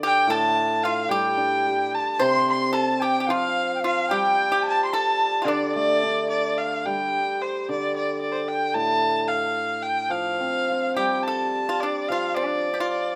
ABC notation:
X:1
M:2/4
L:1/16
Q:1/4=110
K:none
V:1 name="Dizi"
z8 | z8 | c'4 a2 g2 | f3- f/2 g/2 f2 g2- |
g2 a2 a4 | d6 z2 | z8 | z8 |
z8 | z8 | z8 | z8 |]
V:2 name="Erhu"
g2 a4 f2 | g6 a2 | c'2 c'2 a2 g3/2 g/2 | f4 f2 g2- |
g2 a3/2 c'/2 a4 | d2 d4 d2 | f2 g4 c2 | d2 d2 d/2 c/2 d g2 |
a4 f4 | g2 f6 | g2 a4 d2 | f2 d4 d2 |]
V:3 name="Pipa"
G2 A4 F2 | G8 | c4 A2 G3/2 G/2 | F4 F2 G2- |
G G3 A3- A/2 F/2 | D6 z2 | z8 | z8 |
z8 | z8 | G2 A3 F D2 | F2 D2- D/2 G/2 F3 |]
V:4 name="Hammered dulcimer" clef=bass
D,2 A,,6 | G,2 D2 G4 | C,8 | F,6 G,2- |
G,8 | D,2 A,2 D4- | D2 G,6 | D,8 |
A,,8- | A,,2 F,2 C2 F2 | G,8 | F,8 |]